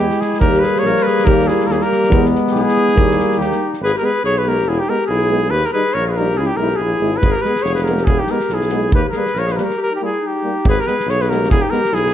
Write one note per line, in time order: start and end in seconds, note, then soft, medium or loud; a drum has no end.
0.00 0.42 G#3 medium
0.00 0.24 B3 medium
0.00 0.24 E4 medium
0.00 0.22 G4 medium
0.10 snare soft
0.21 0.41 E4 medium
0.21 0.40 G#4 medium
0.21 snare soft
0.34 snare soft
0.40 0.64 D#2 medium
0.40 2.12 G3 medium
0.40 2.13 A#3 medium
0.40 0.65 G4 medium
0.40 0.61 A#4 medium
0.40 kick medium
0.55 snare soft
0.60 0.88 G#4 medium
0.60 0.81 B4 medium
0.64 snare soft
0.76 1.04 C#5 medium
0.76 snare soft
0.82 0.94 A#1 medium
0.82 snare soft
0.86 1.08 A#4 medium
0.97 snare soft
1.03 1.30 G#4 medium
1.03 1.27 B4 medium
1.07 snare soft
1.19 snare soft
1.25 1.49 D#2 loud
1.25 1.51 G4 loud
1.25 1.49 A#4 medium
1.25 kick medium
1.40 snare soft
1.48 1.74 E4 medium
1.48 1.69 G#4 medium
1.48 snare soft
1.60 snare soft
1.67 1.79 D#2 medium
1.67 1.74 A#4 medium
1.67 snare soft
1.72 1.79 G4 medium
1.72 1.84 G#4 medium
1.77 1.86 E4 medium
1.77 snare soft
1.83 2.28 G4 medium
1.83 2.27 A#4 loud
1.92 snare soft
2.04 snare soft
2.10 2.34 E2 loud
2.10 2.98 G#3 medium
2.10 2.97 B3 medium
2.10 kick medium
2.25 snare soft
2.35 snare soft
2.48 snare soft
2.52 2.64 B1 medium
2.52 3.44 E4 medium
2.52 3.41 G#4 loud
2.56 snare soft
2.68 snare soft
2.77 snare soft
2.89 snare soft
2.95 3.19 D#2 medium
2.95 3.65 G3 medium
2.95 3.65 A#3 medium
2.95 kick medium
3.11 snare soft
3.20 snare soft
3.32 snare soft
3.37 3.49 D#2 medium
3.37 3.72 G4 medium
3.41 3.74 D#4 medium
3.41 snare soft
3.52 snare soft
3.74 snare soft
3.80 3.92 G#1 medium
3.80 3.94 B4 medium
3.84 3.94 G#4 loud
3.95 4.06 G4 medium
3.95 4.07 A#4 medium
4.00 4.09 G#3 medium
4.00 4.10 B3 medium
4.00 4.23 G#4 medium
4.05 4.25 B4 medium
4.24 4.67 B1 medium
4.24 4.37 G#4 loud
4.24 4.40 C#5 loud
4.37 4.46 G#4 medium
4.37 4.50 B4 medium
4.45 4.54 G#3 medium
4.45 4.54 B3 medium
4.45 4.70 G4 medium
4.45 4.70 A#4 medium
4.66 4.78 E1 medium
4.66 4.82 E4 medium
4.66 4.81 G#4 medium
4.79 4.91 D#4 medium
4.79 4.91 G4 medium
4.88 4.96 G#3 medium
4.88 4.97 B3 medium
4.88 5.10 G4 medium
4.88 5.06 A#4 medium
5.07 5.52 B1 medium
5.07 5.53 E4 medium
5.07 5.52 G#4 medium
5.29 5.38 G#3 medium
5.29 5.39 B3 medium
5.51 5.63 D#2 medium
5.51 5.64 G4 medium
5.51 5.68 B4 loud
5.64 5.73 G4 medium
5.64 5.72 A#4 medium
5.73 5.82 G3 medium
5.73 5.83 D#4 medium
5.73 5.96 G#4 medium
5.73 5.95 B4 medium
5.94 6.39 A#1 medium
5.94 6.09 A#4 medium
5.94 6.06 C#5 loud
6.06 6.13 G#4 medium
6.06 6.09 C#5 medium
6.11 6.20 G#4 medium
6.11 6.15 A#4 medium
6.11 6.19 B4 medium
6.17 6.26 G3 medium
6.17 6.26 D#4 medium
6.17 6.41 G4 medium
6.17 6.39 A#4 medium
6.37 6.49 C#2 medium
6.37 6.53 E4 medium
6.37 6.49 G#4 medium
6.47 6.58 G4 medium
6.52 6.62 D#4 medium
6.57 6.77 B1 medium
6.57 6.66 G#3 medium
6.57 6.69 E4 medium
6.57 6.83 G4 medium
6.57 6.78 A#4 medium
6.76 6.99 A#1 medium
6.76 7.19 G#4 medium
6.81 7.25 E4 medium
7.00 7.20 G#1 medium
7.00 7.10 G#3 medium
7.00 7.10 E4 soft
7.17 7.33 G#1 medium
7.17 7.34 B4 medium
7.23 7.37 G#4 medium
7.23 kick medium
7.32 7.48 G4 medium
7.32 7.44 A#4 medium
7.42 7.52 G#3 soft
7.42 7.64 B4 medium
7.42 snare soft
7.46 7.56 B3 soft
7.46 7.69 G#4 medium
7.56 snare soft
7.63 8.08 F1 medium
7.63 7.75 C#5 medium
7.63 snare soft
7.69 7.79 G#4 medium
7.75 7.86 B4 medium
7.75 snare soft
7.82 7.93 G#4 medium
7.82 8.07 A#4 medium
7.82 snare soft
7.87 7.95 G#3 medium
7.87 7.96 B3 medium
7.92 8.10 G4 medium
7.98 snare soft
8.05 8.19 E1 medium
8.05 8.22 E4 medium
8.05 8.21 G#4 medium
8.05 kick medium
8.19 8.35 D#4 medium
8.19 8.32 G4 medium
8.27 8.38 G#3 medium
8.27 8.38 B3 medium
8.27 8.56 A#4 medium
8.27 snare soft
8.33 8.53 G4 medium
8.40 snare soft
8.49 8.94 B1 medium
8.49 8.94 E4 medium
8.49 snare soft
8.55 8.94 G#4 medium
8.61 snare soft
8.69 8.81 G#3 medium
8.69 8.80 B3 medium
8.69 snare soft
8.92 9.04 D#2 medium
8.92 9.04 G4 loud
8.92 9.05 B4 medium
8.92 kick medium
9.04 9.12 G4 medium
9.10 9.36 G#4 medium
9.10 9.20 A#4 medium
9.10 snare soft
9.16 9.24 G3 medium
9.16 9.24 A#3 medium
9.16 9.41 B4 medium
9.26 snare soft
9.34 9.59 A#1 medium
9.34 9.48 A#4 medium
9.34 snare soft
9.39 9.53 C#5 medium
9.47 9.52 G#4 medium
9.47 snare soft
9.52 9.58 G#4 medium
9.52 9.60 A#4 medium
9.52 9.57 B4 medium
9.57 9.67 G3 medium
9.57 9.67 A#3 medium
9.57 9.76 G4 medium
9.57 9.62 B4 medium
9.57 snare soft
9.61 9.80 A#4 medium
9.70 snare soft
9.77 9.89 G4 medium
9.82 9.92 A#4 medium
9.91 10.00 D#4 medium
9.96 10.02 G4 medium
10.01 10.10 G3 medium
10.01 10.09 A#3 medium
10.01 10.21 E4 medium
10.01 10.29 G#4 medium
10.20 10.63 D#4 medium
10.27 10.67 G4 medium
10.43 10.51 G3 medium
10.43 10.52 A#3 soft
10.64 10.76 G#1 medium
10.64 10.80 G#4 loud
10.64 kick medium
10.69 10.82 B4 medium
10.79 10.90 G4 medium
10.79 10.89 A#4 medium
10.86 10.95 G#3 medium
10.86 10.95 B3 soft
10.86 11.09 G#4 medium
10.86 11.11 B4 medium
10.86 snare soft
11.00 snare soft
11.07 11.51 B1 medium
11.07 11.20 G#4 medium
11.07 11.23 C#5 loud
11.07 snare soft
11.20 11.31 G#4 medium
11.20 11.31 B4 medium
11.20 snare soft
11.29 11.38 G#3 medium
11.29 11.38 B3 medium
11.29 11.50 G4 medium
11.29 11.50 A#4 medium
11.29 snare soft
11.44 snare soft
11.49 11.61 E1 medium
11.49 11.62 E4 medium
11.49 11.63 G#4 loud
11.49 kick medium
11.61 11.74 D#4 medium
11.61 11.72 G4 medium
11.70 11.80 G#3 medium
11.70 11.80 B3 medium
11.70 11.93 G4 medium
11.70 11.96 A#4 medium
11.70 snare soft
11.85 snare soft
11.92 12.14 B1 medium
11.92 12.13 E4 medium
11.92 12.14 G#4 loud
11.92 snare soft
12.07 snare soft